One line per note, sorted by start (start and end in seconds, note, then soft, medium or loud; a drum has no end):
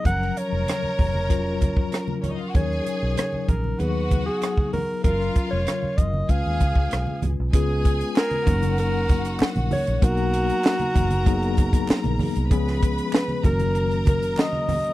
0.04 0.29 F#1 medium
0.04 0.89 F3 medium
0.04 0.89 F#3 medium
0.04 0.89 C#4 medium
0.04 2.13 A#4 medium
0.04 0.89 A#4 medium
0.04 0.39 F#5 loud
0.04 2.13 A#5 loud
0.04 kick medium
0.04 closed hi-hat medium
0.04 muted conga soft
0.04 low conga medium
0.22 cross-stick soft
0.37 2.24 C#5 loud
0.37 closed hi-hat medium
0.37 muted conga soft
0.52 0.64 F1 medium
0.67 cross-stick loud
0.67 closed hi-hat medium
0.67 muted conga soft
0.67 high conga soft
0.83 muted fingered electric bass stroke soft
0.83 high conga medium
0.99 1.89 F1 medium
0.99 kick medium
0.99 open hi-hat soft
0.99 low conga medium
1.14 high conga medium
1.29 2.14 F#3 medium
1.29 2.14 C#4 medium
1.29 2.14 F4 medium
1.29 2.14 A#4 medium
1.29 kick medium
1.29 closed hi-hat medium
1.29 muted conga soft
1.61 kick medium
1.61 closed hi-hat medium
1.61 muted conga soft
1.61 high conga medium
1.77 kick medium
1.92 cross-stick loud
1.92 closed hi-hat medium
1.92 muted conga soft
2.08 high conga medium
2.23 2.31 C#4 medium
2.23 2.31 C#5 medium
2.23 closed hi-hat medium
2.23 muted conga soft
2.23 high conga medium
2.23 low conga medium
2.31 2.39 D#4 medium
2.31 2.39 D#5 medium
2.39 2.47 F4 medium
2.39 2.47 F5 medium
2.47 2.55 F#4 medium
2.47 2.55 F#5 medium
2.54 2.79 D#2 medium
2.54 3.38 F#3 medium
2.54 3.38 C#4 medium
2.54 3.39 D#4 medium
2.54 3.47 G#4 medium
2.54 3.39 A#4 medium
2.54 3.14 C#5 medium
2.54 3.47 G#5 medium
2.54 kick medium
2.54 closed hi-hat medium
2.54 low conga medium
2.71 cross-stick soft
2.86 closed hi-hat medium
2.86 muted conga soft
3.03 3.14 B1 medium
3.17 3.46 C#5 medium
3.17 cross-stick loud
3.17 closed hi-hat medium
3.17 muted conga soft
3.17 high conga soft
3.32 muted fingered electric bass stroke soft
3.32 high conga soft
3.48 3.73 A#1 medium
3.48 3.81 A#4 medium
3.48 kick medium
3.48 closed hi-hat medium
3.48 low conga medium
3.64 high conga medium
3.78 4.28 D#2 medium
3.78 4.63 F#3 medium
3.78 4.63 B3 medium
3.78 4.63 D#4 medium
3.78 4.71 F#4 medium
3.78 4.63 G#4 medium
3.78 4.25 B4 medium
3.78 4.71 F#5 medium
3.78 closed hi-hat medium
3.78 muted conga soft
4.11 kick medium
4.11 closed hi-hat medium
4.11 muted conga soft
4.11 high conga medium
4.26 4.70 G#4 medium
4.42 cross-stick medium
4.42 closed hi-hat medium
4.42 muted conga soft
4.57 kick medium
4.57 high conga medium
4.73 5.02 A#4 medium
4.73 open hi-hat soft
4.73 muted conga soft
4.73 high conga medium
4.73 low conga medium
5.04 5.29 F#1 medium
5.04 5.88 F#3 medium
5.04 5.88 C#4 medium
5.04 5.95 F4 medium
5.04 5.88 F4 medium
5.04 5.48 A#4 medium
5.04 5.88 A#4 medium
5.04 5.96 F5 loud
5.04 kick medium
5.04 closed hi-hat medium
5.04 low conga medium
5.21 cross-stick soft
5.35 kick medium
5.35 closed hi-hat medium
5.35 muted conga soft
5.51 5.64 F1 medium
5.51 5.99 C#5 medium
5.67 cross-stick medium
5.67 closed hi-hat medium
5.67 high conga soft
5.82 muted fingered electric bass stroke soft
5.82 high conga medium
5.98 6.22 F#1 medium
5.98 6.32 D#5 medium
5.98 kick medium
5.98 closed hi-hat medium
5.98 muted conga soft
5.98 low conga medium
6.14 high conga medium
6.28 6.41 C#2 medium
6.28 7.12 G#3 medium
6.28 7.13 C#4 medium
6.28 7.13 F4 medium
6.28 7.20 G#4 medium
6.28 7.13 B4 medium
6.28 7.23 F5 medium
6.28 7.20 G#5 loud
6.28 kick medium
6.28 closed hi-hat medium
6.28 muted conga soft
6.46 6.57 D#2 medium
6.60 6.73 C#2 medium
6.60 kick medium
6.60 closed hi-hat medium
6.60 high conga medium
6.75 6.88 C#2 medium
6.75 kick medium
6.91 7.04 B1 medium
6.91 cross-stick loud
6.91 closed hi-hat medium
6.91 muted conga soft
7.07 high conga medium
7.22 7.35 C#2 medium
7.22 closed hi-hat medium
7.22 muted conga soft
7.22 high conga medium
7.22 low conga medium
7.40 7.51 B1 medium
7.53 8.02 C#2 medium
7.53 8.37 G#3 medium
7.53 8.37 B3 medium
7.53 8.37 C#4 medium
7.53 8.37 F4 medium
7.53 8.45 G#4 medium
7.53 8.12 G#4 medium
7.53 8.37 B4 medium
7.53 8.45 G#5 medium
7.53 kick loud
7.53 closed hi-hat medium
7.85 kick medium
7.85 closed hi-hat medium
8.01 closed hi-hat soft
8.16 8.75 A#4 loud
8.16 snare loud
8.16 clap medium
8.30 closed hi-hat soft
8.30 high conga medium
8.46 9.36 F#1 medium
8.46 9.46 F#3 medium
8.46 9.46 A#3 medium
8.46 9.46 C#4 medium
8.46 9.46 D#4 medium
8.46 9.99 F#4 medium
8.46 9.47 A#4 medium
8.46 9.99 F#5 loud
8.46 kick loud
8.46 closed hi-hat medium
8.46 muted conga soft
8.46 low conga medium
8.62 closed hi-hat medium
8.62 high conga medium
8.77 9.37 A#4 loud
8.77 closed hi-hat medium
8.77 muted conga soft
9.08 kick medium
9.08 closed hi-hat medium
9.08 muted conga soft
9.08 high conga medium
9.25 closed hi-hat medium
9.40 muted fingered electric bass stroke soft
9.40 snare loud
9.40 clap medium
9.40 muted conga soft
9.56 9.68 A#1 medium
9.56 closed hi-hat soft
9.56 high conga medium
9.71 10.06 C#5 loud
9.71 open hi-hat medium
9.71 muted conga soft
9.71 high conga medium
9.71 low conga medium
9.87 9.99 A#1 medium
9.87 closed hi-hat medium
10.02 10.50 B1 loud
10.02 10.86 F#3 medium
10.02 10.86 A#3 medium
10.02 10.86 B3 medium
10.02 10.86 D#4 medium
10.02 12.21 F#4 loud
10.02 12.47 A#4 medium
10.02 10.86 A#4 medium
10.02 12.47 A#5 loud
10.02 kick loud
10.02 closed hi-hat medium
10.02 muted conga soft
10.17 closed hi-hat soft
10.34 closed hi-hat medium
10.49 closed hi-hat medium
10.64 snare loud
10.64 clap medium
10.79 closed hi-hat soft
10.79 high conga medium
10.95 11.85 F#1 medium
10.95 kick loud
10.95 closed hi-hat medium
10.95 muted conga soft
10.95 low conga medium
11.11 closed hi-hat medium
11.11 high conga medium
11.26 12.10 F#3 medium
11.26 12.10 A#3 medium
11.26 12.10 B3 medium
11.26 12.10 D#4 medium
11.26 12.11 G#4 medium
11.26 kick medium
11.26 closed hi-hat medium
11.26 muted conga soft
11.42 closed hi-hat soft
11.57 kick medium
11.57 closed hi-hat medium
11.57 muted conga soft
11.57 high conga medium
11.73 kick loud
11.73 closed hi-hat medium
11.88 muted fingered electric bass stroke soft
11.88 snare loud
11.88 clap medium
12.04 12.17 A#1 medium
12.04 closed hi-hat soft
12.04 high conga medium
12.19 open hi-hat medium
12.19 muted conga soft
12.19 high conga medium
12.19 low conga medium
12.36 12.52 C2 medium
12.36 closed hi-hat soft
12.50 12.99 C#2 loud
12.50 13.34 F3 medium
12.50 13.35 G#3 medium
12.50 13.35 B3 medium
12.50 13.35 C#4 medium
12.50 13.35 G#4 loud
12.50 13.42 B4 medium
12.50 13.42 B5 loud
12.50 kick loud
12.50 closed hi-hat medium
12.68 snare soft
12.82 kick medium
12.82 closed hi-hat medium
12.82 muted conga soft
12.98 closed hi-hat medium
13.13 13.43 B4 medium
13.13 snare loud
13.13 clap medium
13.13 muted conga soft
13.28 high conga medium
13.43 14.34 F#1 medium
13.43 14.43 D#3 medium
13.43 14.44 F#3 medium
13.43 14.44 A#3 medium
13.43 14.44 C#4 medium
13.43 14.44 F#4 medium
13.43 14.93 A#4 medium
13.43 14.03 A#4 loud
13.43 14.93 A#5 medium
13.43 kick medium
13.43 closed hi-hat medium
13.43 muted conga soft
13.43 low conga medium
13.59 closed hi-hat medium
13.59 high conga medium
13.75 closed hi-hat medium
13.75 muted conga soft
13.91 closed hi-hat soft
14.06 14.41 A#4 medium
14.06 kick medium
14.06 closed hi-hat medium
14.06 muted conga soft
14.06 high conga medium
14.23 closed hi-hat medium
14.37 14.93 D#5 loud
14.37 snare loud
14.37 clap medium
14.37 muted conga soft
14.53 high conga medium
14.69 open hi-hat medium
14.69 muted conga soft
14.69 high conga medium
14.69 low conga medium
14.84 closed hi-hat soft